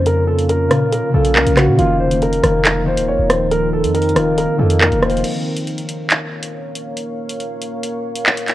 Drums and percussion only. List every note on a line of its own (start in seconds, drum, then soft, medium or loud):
0.06 closed hi-hat medium
0.39 closed hi-hat medium
0.49 closed hi-hat medium
0.71 cross-stick medium
0.71 closed hi-hat medium
0.92 closed hi-hat medium
1.25 closed hi-hat medium
1.36 clap loud
1.47 closed hi-hat medium
1.57 cross-stick loud
1.57 clap medium
1.57 closed hi-hat medium
1.79 closed hi-hat medium
2.11 closed hi-hat medium
2.22 closed hi-hat medium
2.33 closed hi-hat medium
2.44 cross-stick medium
2.44 closed hi-hat medium
2.65 clap loud
2.65 closed hi-hat medium
2.97 closed hi-hat medium
3.30 cross-stick loud
3.30 closed hi-hat medium
3.51 closed hi-hat medium
3.84 closed hi-hat medium
3.95 closed hi-hat medium
4.02 closed hi-hat medium
4.09 closed hi-hat medium
4.16 cross-stick medium
4.16 closed hi-hat medium
4.38 closed hi-hat medium
4.70 closed hi-hat medium
4.81 clap loud
4.92 closed hi-hat medium
5.02 cross-stick loud
5.02 closed hi-hat medium
5.10 closed hi-hat medium
5.17 closed hi-hat medium
5.24 closed hi-hat medium
5.24 crash medium
5.57 closed hi-hat medium
5.67 closed hi-hat medium
5.78 closed hi-hat medium
5.89 closed hi-hat medium
6.10 clap loud
6.10 closed hi-hat medium
6.43 closed hi-hat medium
6.75 closed hi-hat medium
6.97 closed hi-hat medium
7.29 closed hi-hat medium
7.40 closed hi-hat medium
7.61 closed hi-hat medium
7.83 closed hi-hat medium
8.15 closed hi-hat medium
8.26 clap loud
8.37 closed hi-hat medium
8.48 clap medium
8.48 closed hi-hat medium